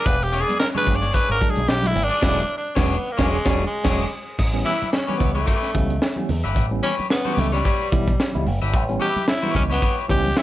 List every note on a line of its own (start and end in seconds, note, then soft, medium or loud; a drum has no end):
0.00 0.15 D4 medium
0.00 0.15 G#4 medium
0.00 0.15 D5 medium
0.06 0.43 E1 loud
0.06 0.25 B4 medium
0.06 kick loud
0.06 closed hi-hat medium
0.06 muted conga soft
0.21 0.42 G4 medium
0.21 muted conga soft
0.32 0.55 D4 medium
0.32 0.55 G#4 medium
0.32 0.55 D5 medium
0.32 closed hi-hat medium
0.41 0.59 G#4 medium
0.48 0.53 G#3 loud
0.48 0.53 B3 loud
0.48 closed hi-hat medium
0.48 high conga medium
0.59 0.68 A#4 medium
0.59 snare loud
0.59 muted conga soft
0.75 1.05 D3 medium
0.75 1.05 F#3 medium
0.75 1.05 G#3 medium
0.75 1.05 D4 medium
0.75 0.97 D4 medium
0.75 0.96 G#4 medium
0.75 0.97 B4 loud
0.75 0.96 C#5 medium
0.75 muted conga soft
0.75 low conga medium
0.87 1.11 G1 loud
0.87 kick medium
0.87 closed hi-hat medium
0.87 high conga medium
0.87 low conga medium
0.96 1.15 D5 medium
1.02 1.12 D4 medium
1.02 1.13 G#4 medium
1.02 1.13 C#5 medium
1.02 closed hi-hat medium
1.13 1.36 D4 medium
1.13 1.36 G#4 medium
1.13 1.31 B4 medium
1.13 1.36 C#5 medium
1.13 kick medium
1.13 closed hi-hat medium
1.28 1.40 G#1 medium
1.28 1.51 A#4 loud
1.28 muted conga soft
1.41 1.60 D3 medium
1.41 1.60 F#3 medium
1.41 1.60 G#3 medium
1.41 1.60 D4 loud
1.41 kick loud
1.41 closed hi-hat medium
1.50 1.70 G#4 medium
1.56 1.67 B1 medium
1.56 closed hi-hat medium
1.56 high conga medium
1.68 1.92 B1 medium
1.68 1.88 G4 loud
1.68 snare loud
1.68 muted conga soft
1.82 1.94 D3 medium
1.82 1.94 F#3 medium
1.82 1.94 G#3 medium
1.82 1.94 E4 medium
1.82 closed hi-hat soft
1.82 high conga medium
1.87 2.05 E4 loud
1.96 2.09 G#1 medium
1.96 closed hi-hat medium
1.96 low conga medium
2.04 2.57 D4 loud
2.09 2.16 G#3 soft
2.09 2.16 C#4 soft
2.09 2.21 D4 medium
2.09 2.21 G#4 medium
2.09 2.20 D5 medium
2.09 closed hi-hat medium
2.21 2.41 E1 loud
2.21 2.41 D3 loud
2.21 2.41 F#3 loud
2.21 2.41 G#3 loud
2.21 2.41 D4 loud
2.21 2.41 E4 medium
2.21 2.41 G#4 loud
2.21 2.41 D5 loud
2.21 kick loud
2.21 snare loud
2.21 crash medium
2.57 2.77 D4 medium
2.75 2.96 E1 loud
2.75 2.95 D3 medium
2.75 2.95 F#3 medium
2.75 2.95 G#3 medium
2.75 3.13 B3 medium
2.75 2.95 C#4 medium
2.75 2.96 D4 loud
2.75 2.95 G#4 loud
2.75 2.95 C#5 loud
2.75 kick loud
2.75 snare loud
3.11 3.31 A#3 medium
3.17 3.37 E1 loud
3.17 3.37 D3 loud
3.17 3.37 F#3 loud
3.17 3.37 G#3 loud
3.17 3.37 C#4 loud
3.17 3.36 D4 loud
3.17 3.36 G#4 loud
3.17 3.36 C#5 loud
3.17 kick loud
3.17 snare loud
3.30 3.49 G#3 medium
3.45 3.64 E1 medium
3.45 3.64 D3 loud
3.45 3.63 F#3 loud
3.45 3.65 G3 medium
3.45 3.64 G#3 loud
3.45 3.64 C#4 loud
3.45 3.64 D4 loud
3.45 3.63 G#4 loud
3.45 3.63 C#5 medium
3.45 kick loud
3.45 snare loud
3.66 4.17 G#3 medium
3.84 4.04 E1 loud
3.84 4.03 D3 medium
3.84 4.03 F#3 loud
3.84 4.03 G#3 medium
3.84 4.04 C#4 medium
3.84 4.04 D4 loud
3.84 4.04 G#4 loud
3.84 4.03 C#5 loud
3.84 kick loud
3.84 snare loud
3.84 crash medium
4.39 4.62 A1 medium
4.39 kick loud
4.39 crash medium
4.39 muted conga soft
4.53 4.71 E3 medium
4.53 4.71 G3 medium
4.53 4.71 B3 medium
4.53 4.71 C#4 loud
4.53 closed hi-hat soft
4.53 muted conga soft
4.65 4.91 E4 loud
4.65 4.88 G4 medium
4.65 4.89 B4 medium
4.65 4.89 E5 medium
4.65 closed hi-hat medium
4.81 muted picked electric bass stroke soft
4.81 closed hi-hat medium
4.81 high conga medium
4.92 5.20 C#4 medium
4.92 snare loud
4.92 muted conga soft
5.07 5.38 E3 medium
5.07 5.38 G3 medium
5.07 5.38 B3 medium
5.07 5.38 C#4 medium
5.07 5.30 G4 medium
5.07 5.29 B4 medium
5.07 5.29 C#5 medium
5.07 closed hi-hat soft
5.07 muted conga soft
5.07 high conga medium
5.18 5.44 C#2 medium
5.18 5.33 B3 medium
5.18 kick medium
5.18 closed hi-hat medium
5.18 high conga medium
5.18 low conga medium
5.34 6.24 A3 medium
5.34 5.45 G4 medium
5.34 5.46 B4 medium
5.34 5.46 C#5 medium
5.34 closed hi-hat medium
5.46 5.69 G4 medium
5.46 5.70 B4 medium
5.46 5.70 C#5 medium
5.46 kick medium
5.46 closed hi-hat medium
5.46 muted conga soft
5.62 snare soft
5.62 closed hi-hat soft
5.62 muted conga soft
5.74 5.98 C#2 medium
5.74 5.94 E3 medium
5.74 5.94 G3 medium
5.74 5.94 B3 medium
5.74 5.94 C#4 medium
5.74 kick medium
5.74 closed hi-hat medium
5.90 closed hi-hat soft
5.90 high conga medium
6.02 snare loud
6.16 6.28 E3 medium
6.16 6.28 G3 medium
6.16 6.28 B3 medium
6.16 6.28 C#4 medium
6.16 muted conga soft
6.16 high conga medium
6.29 6.43 E2 medium
6.29 open hi-hat medium
6.29 low conga medium
6.44 6.56 G1 medium
6.44 6.50 B3 soft
6.44 6.50 C#4 soft
6.44 6.66 G4 medium
6.44 6.65 B4 medium
6.44 6.65 E5 medium
6.44 closed hi-hat soft
6.56 6.80 A1 loud
6.56 kick loud
6.56 closed hi-hat medium
6.56 muted conga soft
6.71 6.88 E3 medium
6.71 6.88 G3 medium
6.71 6.88 B3 medium
6.71 6.88 C#4 medium
6.83 6.95 C#4 medium
6.83 7.05 G4 medium
6.83 7.06 B4 medium
6.83 7.06 C#5 medium
6.83 closed hi-hat medium
6.99 muted picked electric bass stroke soft
6.99 closed hi-hat medium
6.99 high conga medium
7.10 7.18 B3 soft
7.10 7.41 B3 medium
7.10 7.18 E4 soft
7.10 snare loud
7.10 muted conga soft
7.25 7.55 E3 medium
7.25 7.55 G3 medium
7.25 7.56 B3 medium
7.25 7.55 C#4 medium
7.25 7.47 G4 medium
7.25 7.47 B4 medium
7.25 7.46 C#5 medium
7.25 muted conga soft
7.25 high conga medium
7.37 7.61 C#2 medium
7.37 7.55 A3 medium
7.37 closed hi-hat medium
7.37 high conga medium
7.37 low conga medium
7.52 8.47 G3 medium
7.52 7.63 G4 medium
7.52 7.64 B4 medium
7.52 7.64 C#5 medium
7.52 snare soft
7.52 closed hi-hat medium
7.64 7.87 G4 medium
7.64 7.87 B4 medium
7.64 7.87 C#5 medium
7.64 kick medium
7.64 closed hi-hat medium
7.64 muted conga soft
7.79 closed hi-hat soft
7.79 muted conga soft
7.92 8.16 B1 medium
7.92 8.11 E3 loud
7.92 8.11 G3 medium
7.92 8.11 B3 medium
7.92 8.11 E4 loud
7.92 kick loud
7.92 closed hi-hat medium
8.07 kick medium
8.07 closed hi-hat medium
8.07 high conga medium
8.20 snare loud
8.33 8.45 C#2 medium
8.33 8.45 E3 medium
8.33 8.45 G3 medium
8.33 8.45 B3 medium
8.33 8.45 E4 loud
8.33 high conga medium
8.46 8.60 F#1 medium
8.46 open hi-hat medium
8.46 low conga medium
8.62 8.74 G1 medium
8.62 8.67 B3 soft
8.62 8.67 E4 soft
8.62 8.83 G4 medium
8.62 8.83 B4 medium
8.62 8.83 E5 medium
8.62 closed hi-hat soft
8.74 8.97 A1 loud
8.74 kick loud
8.74 closed hi-hat medium
8.88 9.06 E3 medium
8.88 9.06 G3 medium
8.88 9.06 B3 medium
8.88 9.06 C#4 loud
8.88 closed hi-hat soft
8.88 muted conga soft
9.00 9.22 G4 medium
9.00 9.26 G4 loud
9.00 9.23 B4 medium
9.00 9.23 E5 medium
9.00 closed hi-hat medium
9.16 muted picked electric bass stroke soft
9.16 closed hi-hat medium
9.16 high conga medium
9.28 9.53 E4 medium
9.28 snare loud
9.28 muted conga soft
9.42 9.73 E3 medium
9.42 9.73 G3 medium
9.42 9.73 B3 medium
9.42 9.73 E4 medium
9.42 9.64 G4 medium
9.42 9.64 B4 medium
9.42 9.64 C#5 medium
9.42 closed hi-hat soft
9.42 high conga medium
9.55 9.79 C#2 medium
9.55 9.62 C#4 medium
9.55 kick medium
9.55 closed hi-hat medium
9.55 high conga medium
9.55 low conga medium
9.70 9.96 B3 medium
9.70 9.80 G4 medium
9.70 9.81 B4 medium
9.70 9.82 C#5 medium
9.70 snare soft
9.70 closed hi-hat medium
9.82 10.04 G4 medium
9.82 10.05 B4 medium
9.82 10.05 C#5 medium
9.82 kick medium
9.82 closed hi-hat medium
9.82 muted conga soft
9.96 closed hi-hat soft
9.96 muted conga soft
10.09 10.33 C#2 medium
10.09 10.28 E3 loud
10.09 10.28 G3 medium
10.09 10.28 B3 medium
10.09 10.28 C#4 loud
10.09 10.39 G4 loud
10.09 kick loud
10.09 closed hi-hat medium
10.24 closed hi-hat medium
10.24 high conga medium
10.37 10.42 E4 loud
10.37 snare loud